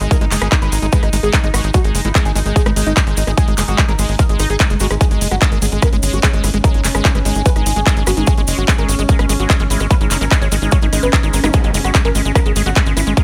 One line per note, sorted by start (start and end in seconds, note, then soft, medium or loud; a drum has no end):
0.00 0.08 G#1 medium
0.00 0.05 G#3 medium
0.00 0.10 G#3 medium
0.00 5.02 D#4 medium
0.00 closed hi-hat soft
0.00 cabasa soft
0.11 0.18 G#3 medium
0.11 0.15 A#4 loud
0.11 kick loud
0.11 closed hi-hat medium
0.11 cabasa medium
0.21 0.28 G#1 medium
0.21 0.25 G#3 loud
0.21 0.26 D#4 medium
0.21 closed hi-hat medium
0.21 cabasa soft
0.31 0.38 F#1 loud
0.31 0.41 G#3 medium
0.31 0.36 D#4 medium
0.31 clap medium
0.31 open hi-hat loud
0.31 cabasa medium
0.41 0.49 G#1 medium
0.41 0.48 G#3 medium
0.41 0.46 G#4 medium
0.41 cross-stick medium
0.41 closed hi-hat medium
0.41 cabasa soft
0.52 0.56 G#3 loud
0.52 0.56 D#4 medium
0.52 kick loud
0.52 clap loud
0.52 closed hi-hat medium
0.52 cabasa medium
0.62 0.69 G#1 medium
0.62 0.72 G#3 medium
0.62 0.66 B4 medium
0.62 closed hi-hat soft
0.62 cabasa soft
0.72 0.79 G#1 loud
0.72 0.79 G#3 medium
0.72 0.77 D#4 medium
0.72 open hi-hat loud
0.72 cabasa medium
0.82 0.89 G#1 medium
0.82 0.86 G#3 loud
0.82 0.87 D#4 medium
0.82 closed hi-hat medium
0.82 cabasa soft
0.92 1.02 G#3 medium
0.92 0.97 B4 medium
0.92 kick loud
0.92 closed hi-hat medium
0.92 cabasa medium
1.03 1.10 G#1 medium
1.03 1.09 G#3 medium
1.03 1.07 D#4 medium
1.03 cross-stick soft
1.03 closed hi-hat medium
1.03 cabasa soft
1.13 1.20 G#1 loud
1.13 1.17 G#3 loud
1.13 1.17 D#4 medium
1.13 open hi-hat loud
1.13 cabasa medium
1.23 1.30 G#1 medium
1.23 1.33 G#3 medium
1.23 1.28 G#4 medium
1.23 closed hi-hat medium
1.23 cabasa soft
1.33 1.40 G#3 medium
1.33 1.38 D#4 medium
1.33 kick loud
1.33 clap loud
1.33 closed hi-hat medium
1.33 cabasa soft
1.44 1.51 G#1 medium
1.44 1.48 G#3 loud
1.44 1.48 D#4 medium
1.44 closed hi-hat medium
1.44 cabasa soft
1.54 1.61 G#1 loud
1.54 1.64 G#3 medium
1.54 1.58 F#4 medium
1.54 cross-stick medium
1.54 open hi-hat loud
1.54 cabasa medium
1.64 1.71 G#1 medium
1.64 1.71 G#3 medium
1.64 1.68 D#4 medium
1.64 closed hi-hat medium
1.64 cabasa soft
1.74 1.78 G#3 loud
1.74 1.79 F#4 loud
1.74 kick loud
1.74 closed hi-hat medium
1.74 cabasa medium
1.84 1.92 G#1 medium
1.84 1.94 G#3 medium
1.84 1.89 G#3 medium
1.84 closed hi-hat medium
1.84 cabasa soft
1.95 2.02 F#1 loud
1.95 2.01 G#3 medium
1.95 1.99 G#3 medium
1.95 open hi-hat loud
1.95 cabasa medium
2.04 2.12 G#1 medium
2.04 2.09 G#3 loud
2.04 2.09 E4 medium
2.04 closed hi-hat medium
2.04 cabasa soft
2.15 2.25 G#3 medium
2.15 2.19 G#3 medium
2.15 kick loud
2.15 cross-stick soft
2.15 clap loud
2.15 closed hi-hat medium
2.15 cabasa soft
2.25 2.32 G#1 medium
2.25 2.32 G#3 medium
2.25 2.30 G#4 loud
2.25 closed hi-hat medium
2.25 cabasa soft
2.35 2.43 G#1 loud
2.35 2.39 G#3 loud
2.35 2.40 G#3 medium
2.35 open hi-hat loud
2.35 cabasa medium
2.46 2.53 G#1 medium
2.46 2.55 G#3 medium
2.46 2.50 G#3 medium
2.46 closed hi-hat medium
2.46 cabasa soft
2.56 2.63 G#3 medium
2.56 2.60 G#4 loud
2.56 kick loud
2.56 closed hi-hat medium
2.56 cabasa soft
2.65 2.73 G#1 medium
2.65 2.70 G#3 loud
2.65 2.70 G#3 medium
2.65 cross-stick medium
2.65 closed hi-hat medium
2.65 cabasa soft
2.76 2.83 G#1 loud
2.76 2.86 G#3 medium
2.76 2.81 G#3 medium
2.76 open hi-hat loud
2.76 cabasa medium
2.86 2.94 G#1 medium
2.86 2.93 G#3 medium
2.86 2.91 D#4 medium
2.86 closed hi-hat medium
2.86 cabasa soft
2.97 3.01 G#3 loud
2.97 3.01 G#3 medium
2.97 kick loud
2.97 clap loud
2.97 closed hi-hat medium
2.97 cabasa medium
3.07 3.14 G#1 medium
3.07 3.17 G#3 medium
3.07 3.11 G#3 medium
3.07 closed hi-hat medium
3.07 cabasa soft
3.17 3.24 G#1 loud
3.17 3.24 G#3 medium
3.17 3.22 D#4 medium
3.17 open hi-hat loud
3.17 cabasa medium
3.27 3.34 G#1 loud
3.27 3.31 G#3 loud
3.27 3.32 G#3 medium
3.27 cross-stick soft
3.27 closed hi-hat medium
3.27 cabasa soft
3.38 3.47 G#3 medium
3.38 3.42 G#4 loud
3.38 kick loud
3.38 closed hi-hat medium
3.38 cabasa soft
3.48 3.55 G#1 medium
3.48 3.54 G#3 medium
3.48 3.52 G#3 medium
3.48 closed hi-hat medium
3.48 cabasa soft
3.57 3.65 F#1 loud
3.57 3.62 G#3 loud
3.57 3.62 G#3 medium
3.57 clap medium
3.57 open hi-hat loud
3.57 cabasa loud
3.68 3.75 G#1 medium
3.68 3.78 G#3 medium
3.68 3.73 F#4 medium
3.68 closed hi-hat medium
3.68 cabasa soft
3.78 3.85 G#3 medium
3.78 3.83 G#3 medium
3.78 kick loud
3.78 cross-stick medium
3.78 clap loud
3.78 closed hi-hat medium
3.78 cabasa soft
3.89 3.96 G#1 medium
3.89 3.93 G#3 loud
3.89 3.93 A#4 medium
3.89 closed hi-hat medium
3.89 cabasa soft
3.99 4.06 G#1 loud
3.99 4.08 G#3 medium
3.99 4.03 G#3 medium
3.99 open hi-hat loud
3.99 cabasa medium
4.09 4.16 G#1 medium
4.09 4.16 G#3 medium
4.09 4.13 G#3 medium
4.09 open hi-hat medium
4.09 cabasa soft
4.19 4.23 G#3 loud
4.19 4.24 A#4 medium
4.19 kick loud
4.19 closed hi-hat medium
4.19 cabasa medium
4.29 4.36 G#1 medium
4.29 4.39 G#3 medium
4.29 4.34 G#3 medium
4.29 closed hi-hat medium
4.29 cabasa soft
4.39 4.47 G#1 loud
4.39 4.44 G#3 medium
4.39 4.49 D#4 loud
4.39 cross-stick soft
4.39 open hi-hat loud
4.39 cabasa medium
4.50 4.57 G#1 medium
4.50 4.56 D#4 medium
4.50 4.54 G#4 medium
4.50 closed hi-hat medium
4.50 cabasa soft
4.60 4.64 G#3 medium
4.60 kick loud
4.60 clap loud
4.60 closed hi-hat medium
4.60 cabasa medium
4.70 4.77 F#1 medium
4.70 4.75 G#3 medium
4.70 4.74 G#3 medium
4.70 closed hi-hat medium
4.70 cabasa soft
4.80 4.87 G#1 loud
4.80 4.87 G#3 loud
4.80 4.85 F#4 medium
4.80 open hi-hat loud
4.80 cabasa medium
4.91 4.98 G#1 medium
4.91 4.95 G#3 medium
4.91 cross-stick medium
4.91 closed hi-hat medium
4.91 cabasa soft
5.01 5.05 G#3 loud
5.01 13.24 C#4 medium
5.01 5.05 G#4 loud
5.01 kick loud
5.01 closed hi-hat medium
5.01 cabasa soft
5.11 5.18 G#1 medium
5.11 5.21 G#3 medium
5.11 5.15 G#3 medium
5.11 closed hi-hat medium
5.11 cabasa soft
5.21 5.28 F#1 loud
5.21 5.26 G#3 medium
5.21 5.28 G#3 medium
5.21 open hi-hat loud
5.21 cabasa loud
5.31 5.38 G#1 medium
5.31 5.35 G#3 loud
5.31 5.36 F#4 medium
5.31 cross-stick soft
5.31 closed hi-hat medium
5.31 cabasa soft
5.41 5.46 G#3 medium
5.41 5.51 G#3 medium
5.41 kick loud
5.41 clap loud
5.41 closed hi-hat medium
5.41 cabasa soft
5.52 5.59 G#1 medium
5.52 5.58 G#3 medium
5.52 5.56 A#4 medium
5.52 closed hi-hat medium
5.52 cabasa soft
5.62 5.69 G#1 loud
5.62 5.66 G#3 loud
5.62 5.66 G#3 medium
5.62 open hi-hat loud
5.62 cabasa medium
5.72 5.79 G#1 medium
5.72 5.82 G#3 medium
5.72 5.77 G#3 medium
5.72 closed hi-hat medium
5.72 cabasa soft
5.82 5.87 A#4 medium
5.82 kick loud
5.82 cross-stick medium
5.82 closed hi-hat medium
5.82 cabasa medium
5.93 6.00 G#1 medium
5.93 5.97 G#3 loud
5.93 5.97 G#3 medium
5.93 closed hi-hat medium
5.93 cabasa soft
6.03 6.10 G#1 loud
6.03 6.13 G#3 medium
6.03 6.07 G#3 medium
6.03 open hi-hat loud
6.03 cabasa medium
6.13 6.20 G#1 medium
6.13 6.20 G#3 medium
6.13 6.17 F#4 loud
6.13 closed hi-hat medium
6.13 cabasa soft
6.23 6.27 G#3 loud
6.23 6.28 G#3 medium
6.23 kick loud
6.23 clap loud
6.23 closed hi-hat medium
6.23 cabasa medium
6.33 6.41 G#1 medium
6.33 6.43 G#3 medium
6.33 6.38 G#3 medium
6.33 closed hi-hat medium
6.33 cabasa soft
6.44 6.51 G#1 loud
6.44 6.50 G#3 medium
6.44 6.48 E4 medium
6.44 cross-stick soft
6.44 open hi-hat loud
6.44 cabasa medium
6.53 6.61 G#1 loud
6.53 6.58 G#3 loud
6.53 6.58 G#3 medium
6.53 closed hi-hat medium
6.53 cabasa soft
6.64 6.74 G#3 medium
6.64 6.68 A#4 loud
6.64 kick loud
6.64 closed hi-hat medium
6.64 cabasa medium
6.74 6.81 G#1 medium
6.74 6.81 G#3 medium
6.74 6.79 D#4 medium
6.74 closed hi-hat medium
6.74 cabasa soft
6.84 6.92 F#1 loud
6.84 6.88 G#3 loud
6.84 6.89 D#4 medium
6.84 clap medium
6.84 open hi-hat loud
6.84 cabasa loud
6.95 7.02 G#1 medium
6.95 7.04 G#3 medium
6.95 6.99 G#4 medium
6.95 cross-stick medium
6.95 closed hi-hat medium
6.95 cabasa soft
7.05 7.12 G#3 medium
7.05 7.09 D#4 medium
7.05 kick loud
7.05 clap loud
7.05 closed hi-hat medium
7.05 cabasa soft
7.15 7.22 G#1 medium
7.15 7.19 G#3 loud
7.15 7.19 B4 medium
7.15 closed hi-hat medium
7.15 cabasa soft
7.25 7.32 G#1 loud
7.25 7.35 G#3 medium
7.25 7.30 D#4 medium
7.25 open hi-hat loud
7.25 cabasa medium
7.35 7.43 G#1 medium
7.35 7.42 G#3 medium
7.35 7.40 D#4 medium
7.35 closed hi-hat medium
7.35 cabasa soft
7.46 7.50 G#3 loud
7.46 7.50 B4 medium
7.46 kick loud
7.46 closed hi-hat medium
7.46 cabasa medium
7.56 7.63 G#1 medium
7.56 7.66 G#3 medium
7.56 7.60 D#4 medium
7.56 cross-stick soft
7.56 closed hi-hat medium
7.56 cabasa soft
7.66 7.73 G#1 loud
7.66 7.73 G#3 medium
7.66 7.70 D#4 medium
7.66 open hi-hat loud
7.66 cabasa loud
7.76 7.83 G#1 medium
7.76 7.80 G#3 loud
7.76 7.81 G#4 medium
7.76 closed hi-hat medium
7.76 cabasa soft
7.86 7.96 G#3 medium
7.86 7.91 D#4 medium
7.86 kick loud
7.86 clap loud
7.86 closed hi-hat medium
7.86 cabasa medium
7.97 8.04 G#1 medium
7.97 8.03 G#3 medium
7.97 8.01 D#4 medium
7.97 closed hi-hat medium
7.97 cabasa soft
8.07 8.14 G#1 loud
8.07 8.11 G#3 loud
8.07 8.11 F#4 medium
8.07 cross-stick medium
8.07 open hi-hat loud
8.07 cabasa loud
8.17 8.24 G#1 loud
8.17 8.27 G#3 medium
8.17 8.21 D#4 medium
8.17 closed hi-hat medium
8.17 cabasa soft
8.27 8.32 G#4 loud
8.27 kick loud
8.27 closed hi-hat medium
8.27 cabasa medium
8.38 8.45 G#1 medium
8.38 8.42 G#3 medium
8.38 8.42 G#3 loud
8.38 closed hi-hat medium
8.38 cabasa soft
8.47 8.55 F#1 loud
8.47 8.57 G#3 medium
8.47 8.52 G#3 medium
8.47 open hi-hat loud
8.47 cabasa loud
8.58 8.65 G#1 medium
8.58 8.65 G#3 medium
8.58 8.62 F#4 medium
8.58 closed hi-hat soft
8.58 cabasa soft
8.68 8.72 G#3 loud
8.68 8.73 G#3 medium
8.68 kick loud
8.68 cross-stick soft
8.68 clap loud
8.68 closed hi-hat medium
8.68 cabasa medium
8.78 8.85 G#1 medium
8.78 8.88 G#3 medium
8.78 8.83 A#4 medium
8.78 closed hi-hat medium
8.78 cabasa soft
8.89 8.96 G#1 loud
8.89 8.95 G#3 medium
8.89 8.93 G#3 medium
8.89 open hi-hat loud
8.89 cabasa medium
8.99 9.06 G#1 medium
8.99 9.03 G#3 loud
8.99 9.03 G#3 medium
8.99 closed hi-hat medium
8.99 cabasa soft
9.09 9.19 G#3 medium
9.09 9.13 A#4 medium
9.09 kick loud
9.09 closed hi-hat medium
9.09 cabasa medium
9.19 9.26 G#1 medium
9.19 9.26 G#3 medium
9.19 9.24 G#3 medium
9.19 cross-stick medium
9.19 closed hi-hat medium
9.19 cabasa soft
9.29 9.36 G#1 loud
9.29 9.33 G#3 loud
9.29 9.34 G#3 medium
9.29 open hi-hat loud
9.29 cabasa loud
9.39 9.47 G#1 medium
9.39 9.49 G#3 medium
9.39 9.44 F#4 medium
9.39 closed hi-hat medium
9.39 cabasa soft
9.50 9.56 G#3 medium
9.50 9.54 G#3 medium
9.50 kick loud
9.50 clap loud
9.50 closed hi-hat medium
9.50 cabasa medium
9.59 9.67 G#1 medium
9.59 9.64 G#3 loud
9.59 9.64 G#3 medium
9.59 closed hi-hat medium
9.59 cabasa soft
9.70 9.77 G#1 loud
9.70 9.80 G#3 medium
9.70 9.75 E4 medium
9.70 open hi-hat loud
9.70 cabasa medium
9.80 9.87 G#1 loud
9.80 9.87 G#3 medium
9.80 9.85 G#3 medium
9.80 cross-stick soft
9.80 closed hi-hat medium
9.80 cabasa soft
9.90 9.95 G#3 loud
9.90 9.95 B4 loud
9.90 kick loud
9.90 closed hi-hat medium
9.90 cabasa medium
10.01 10.08 G#1 medium
10.01 10.11 G#3 medium
10.01 10.05 D#4 medium
10.01 closed hi-hat soft
10.01 cabasa soft
10.11 10.18 F#1 loud
10.11 10.18 G#3 medium
10.11 10.15 D#4 medium
10.11 clap medium
10.11 open hi-hat loud
10.11 cabasa loud
10.21 10.28 G#1 medium
10.21 10.25 G#3 loud
10.21 10.26 A#4 medium
10.21 closed hi-hat soft
10.21 cabasa soft
10.31 10.41 G#3 medium
10.31 10.36 D#4 medium
10.31 kick loud
10.31 cross-stick medium
10.31 clap loud
10.31 closed hi-hat medium
10.31 cabasa soft
10.42 10.49 G#1 medium
10.42 10.48 G#3 medium
10.42 10.46 C#5 loud
10.42 closed hi-hat soft
10.42 cabasa soft
10.52 10.59 G#1 loud
10.52 10.56 G#3 loud
10.52 10.56 D#4 medium
10.52 open hi-hat loud
10.52 cabasa loud
10.62 10.69 G#1 medium
10.62 10.72 G#3 medium
10.62 10.66 D#4 medium
10.62 closed hi-hat medium
10.62 cabasa soft
10.71 10.79 G#3 medium
10.71 10.77 C#5 medium
10.71 kick loud
10.71 closed hi-hat medium
10.71 cabasa medium
10.82 10.89 G#1 medium
10.82 10.86 G#3 loud
10.82 10.87 D#4 medium
10.82 closed hi-hat medium
10.82 cabasa soft
10.93 11.00 G#1 loud
10.93 11.02 G#3 medium
10.93 10.97 D#4 medium
10.93 cross-stick soft
10.93 open hi-hat loud
10.93 cabasa loud
11.03 11.10 G#1 medium
11.03 11.09 G#3 medium
11.03 11.07 B4 medium
11.03 closed hi-hat medium
11.03 cabasa soft
11.13 11.17 G#3 loud
11.13 11.17 D#4 medium
11.13 kick loud
11.13 clap loud
11.13 closed hi-hat medium
11.13 cabasa medium
11.23 11.30 G#1 medium
11.23 11.33 G#3 medium
11.23 11.28 D#4 medium
11.23 closed hi-hat medium
11.23 cabasa soft
11.33 11.40 G#1 loud
11.33 11.40 G#3 medium
11.33 11.38 A#4 medium
11.33 open hi-hat loud
11.33 cabasa loud
11.44 11.51 G#1 medium
11.44 11.48 G#3 loud
11.44 11.48 D#4 medium
11.44 cross-stick medium
11.44 closed hi-hat soft
11.44 zap medium
11.44 cabasa soft
11.53 11.60 G#3 medium
11.53 11.58 G#4 loud
11.53 kick loud
11.53 closed hi-hat medium
11.53 cabasa medium
11.64 11.71 G#1 medium
11.64 11.71 G#3 medium
11.64 11.68 G#3 medium
11.64 closed hi-hat medium
11.64 cabasa soft
11.74 11.81 F#1 loud
11.74 11.78 G#3 loud
11.74 11.79 G#3 medium
11.74 open hi-hat loud
11.74 cabasa medium
11.84 11.92 G#1 medium
11.84 11.91 G#3 medium
11.84 11.89 F#4 medium
11.84 cross-stick soft
11.84 closed hi-hat soft
11.84 cabasa soft
11.94 12.01 G#3 medium
11.94 11.99 G#3 medium
11.94 kick loud
11.94 clap loud
11.94 closed hi-hat medium
11.94 cabasa medium
12.05 12.12 G#1 medium
12.05 12.09 G#3 loud
12.05 12.09 A#4 medium
12.05 closed hi-hat medium
12.05 cabasa soft
12.15 12.22 G#1 loud
12.15 12.22 G#3 medium
12.15 12.19 G#3 medium
12.15 open hi-hat loud
12.15 cabasa medium
12.25 12.32 G#1 medium
12.25 12.32 G#3 medium
12.25 12.30 G#3 medium
12.25 closed hi-hat medium
12.25 cabasa soft
12.35 12.39 G#3 loud
12.35 12.40 A#4 medium
12.35 kick loud
12.35 cross-stick medium
12.35 closed hi-hat medium
12.35 cabasa soft
12.46 12.53 G#1 medium
12.46 12.52 G#3 medium
12.46 12.50 G#3 medium
12.46 closed hi-hat medium
12.46 cabasa soft
12.56 12.63 G#1 loud
12.56 12.63 G#3 medium
12.56 12.60 G#3 medium
12.56 open hi-hat loud
12.56 cabasa medium
12.66 12.73 G#1 medium
12.66 12.70 G#3 loud
12.66 12.70 F#4 medium
12.66 closed hi-hat medium
12.66 cabasa soft
12.76 12.83 G#3 medium
12.76 12.81 G#3 medium
12.76 kick loud
12.76 clap loud
12.76 closed hi-hat medium
12.76 cabasa medium
12.86 12.94 G#1 medium
12.86 12.93 G#3 medium
12.86 12.91 G#3 medium
12.86 closed hi-hat medium
12.86 cabasa soft
12.97 13.04 G#1 loud
12.97 13.01 G#3 loud
12.97 13.01 E4 medium
12.97 cross-stick soft
12.97 open hi-hat loud
12.97 cabasa medium
13.07 13.14 G#1 medium
13.07 13.14 G#3 medium
13.07 13.11 G#3 medium
13.07 closed hi-hat medium
13.07 cabasa soft
13.17 13.24 G#3 medium
13.17 13.22 A#4 loud
13.17 kick loud
13.17 closed hi-hat medium
13.17 cabasa soft